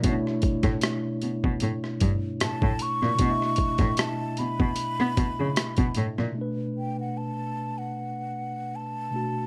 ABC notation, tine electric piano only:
X:1
M:4/4
L:1/8
Q:"Swing 16ths" 1/4=76
K:Bm
V:1 name="Tine electric piano"
[B,,A,CDEc]8 | [B,,A,DE^de]8 | [B,,A,DB]6- [B,,A,DB] [B,,A,DF] |]